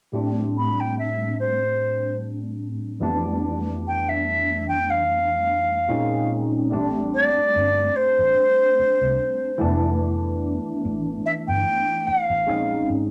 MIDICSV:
0, 0, Header, 1, 5, 480
1, 0, Start_track
1, 0, Key_signature, 0, "minor"
1, 0, Tempo, 821918
1, 77, Time_signature, 4, 2, 24, 8
1, 7654, End_track
2, 0, Start_track
2, 0, Title_t, "Flute"
2, 0, Program_c, 0, 73
2, 338, Note_on_c, 0, 83, 70
2, 469, Note_on_c, 0, 79, 69
2, 478, Note_off_c, 0, 83, 0
2, 569, Note_off_c, 0, 79, 0
2, 577, Note_on_c, 0, 76, 72
2, 791, Note_off_c, 0, 76, 0
2, 816, Note_on_c, 0, 72, 72
2, 1263, Note_off_c, 0, 72, 0
2, 2265, Note_on_c, 0, 79, 78
2, 2389, Note_on_c, 0, 76, 81
2, 2398, Note_off_c, 0, 79, 0
2, 2729, Note_off_c, 0, 76, 0
2, 2734, Note_on_c, 0, 79, 88
2, 2864, Note_on_c, 0, 77, 74
2, 2873, Note_off_c, 0, 79, 0
2, 3686, Note_off_c, 0, 77, 0
2, 4173, Note_on_c, 0, 74, 91
2, 4649, Note_on_c, 0, 72, 87
2, 4658, Note_off_c, 0, 74, 0
2, 5603, Note_off_c, 0, 72, 0
2, 6575, Note_on_c, 0, 76, 87
2, 6610, Note_off_c, 0, 76, 0
2, 6702, Note_on_c, 0, 79, 90
2, 7051, Note_on_c, 0, 77, 74
2, 7060, Note_off_c, 0, 79, 0
2, 7524, Note_off_c, 0, 77, 0
2, 7654, End_track
3, 0, Start_track
3, 0, Title_t, "Tine electric piano"
3, 0, Program_c, 1, 4
3, 70, Note_on_c, 1, 45, 52
3, 76, Note_on_c, 1, 55, 52
3, 82, Note_on_c, 1, 57, 50
3, 84, Note_on_c, 1, 60, 53
3, 90, Note_on_c, 1, 62, 57
3, 185, Control_c, 1, 64, 127
3, 1731, Note_off_c, 1, 45, 0
3, 1733, Note_off_c, 1, 55, 0
3, 1736, Note_off_c, 1, 57, 0
3, 1737, Note_off_c, 1, 60, 0
3, 1740, Note_off_c, 1, 62, 0
3, 1751, Note_on_c, 1, 41, 66
3, 1755, Note_on_c, 1, 52, 54
3, 1759, Note_on_c, 1, 55, 58
3, 1762, Note_on_c, 1, 57, 54
3, 1765, Control_c, 1, 64, 0
3, 1766, Note_on_c, 1, 59, 53
3, 1769, Note_on_c, 1, 62, 72
3, 1873, Control_c, 1, 64, 127
3, 3411, Note_off_c, 1, 41, 0
3, 3413, Note_off_c, 1, 52, 0
3, 3415, Note_off_c, 1, 55, 0
3, 3416, Note_off_c, 1, 57, 0
3, 3418, Note_off_c, 1, 59, 0
3, 3420, Note_off_c, 1, 62, 0
3, 3435, Note_on_c, 1, 46, 66
3, 3438, Note_on_c, 1, 56, 54
3, 3439, Note_on_c, 1, 60, 61
3, 3441, Note_on_c, 1, 61, 56
3, 3444, Note_on_c, 1, 63, 71
3, 3446, Control_c, 1, 64, 0
3, 3531, Control_c, 1, 64, 127
3, 3912, Note_on_c, 1, 55, 58
3, 3916, Note_off_c, 1, 46, 0
3, 3916, Note_off_c, 1, 60, 0
3, 3918, Note_off_c, 1, 56, 0
3, 3918, Note_on_c, 1, 57, 56
3, 3919, Note_off_c, 1, 61, 0
3, 3921, Note_off_c, 1, 63, 0
3, 3923, Note_on_c, 1, 60, 55
3, 3925, Control_c, 1, 64, 0
3, 3931, Note_on_c, 1, 62, 73
3, 4025, Control_c, 1, 64, 127
3, 5572, Note_off_c, 1, 55, 0
3, 5574, Note_off_c, 1, 57, 0
3, 5577, Note_off_c, 1, 60, 0
3, 5581, Note_off_c, 1, 62, 0
3, 5593, Note_on_c, 1, 52, 73
3, 5600, Note_on_c, 1, 57, 58
3, 5604, Control_c, 1, 64, 0
3, 5605, Note_on_c, 1, 59, 58
3, 5611, Note_on_c, 1, 62, 74
3, 5694, Control_c, 1, 64, 127
3, 7252, Note_off_c, 1, 52, 0
3, 7255, Note_off_c, 1, 57, 0
3, 7258, Note_off_c, 1, 59, 0
3, 7261, Note_off_c, 1, 62, 0
3, 7280, Note_on_c, 1, 56, 55
3, 7283, Note_on_c, 1, 60, 50
3, 7286, Control_c, 1, 64, 0
3, 7286, Note_on_c, 1, 61, 48
3, 7288, Note_on_c, 1, 63, 62
3, 7380, Control_c, 1, 64, 127
3, 7654, Note_off_c, 1, 56, 0
3, 7654, Note_off_c, 1, 60, 0
3, 7654, Note_off_c, 1, 61, 0
3, 7654, Note_off_c, 1, 63, 0
3, 7654, End_track
4, 0, Start_track
4, 0, Title_t, "Fingered electric bass"
4, 0, Program_c, 2, 33
4, 3930, Note_on_c, 2, 33, 83
4, 4300, Note_off_c, 2, 33, 0
4, 4413, Note_on_c, 2, 31, 82
4, 4594, Note_off_c, 2, 31, 0
4, 4782, Note_on_c, 2, 33, 74
4, 4863, Note_off_c, 2, 33, 0
4, 5263, Note_on_c, 2, 36, 66
4, 5343, Note_off_c, 2, 36, 0
4, 5612, Note_on_c, 2, 29, 73
4, 6169, Note_off_c, 2, 29, 0
4, 6335, Note_on_c, 2, 33, 81
4, 6516, Note_off_c, 2, 33, 0
4, 6704, Note_on_c, 2, 31, 82
4, 6784, Note_off_c, 2, 31, 0
4, 7182, Note_on_c, 2, 33, 74
4, 7293, Note_off_c, 2, 33, 0
4, 7293, Note_on_c, 2, 34, 73
4, 7474, Note_off_c, 2, 34, 0
4, 7531, Note_on_c, 2, 32, 80
4, 7654, Note_off_c, 2, 32, 0
4, 7654, End_track
5, 0, Start_track
5, 0, Title_t, "Muted fingered electric bass strokes"
5, 5134, Note_on_c, 9, 29, 38
5, 5192, Note_off_c, 9, 29, 0
5, 7053, Note_on_c, 9, 29, 36
5, 7112, Note_off_c, 9, 29, 0
5, 7654, End_track
0, 0, End_of_file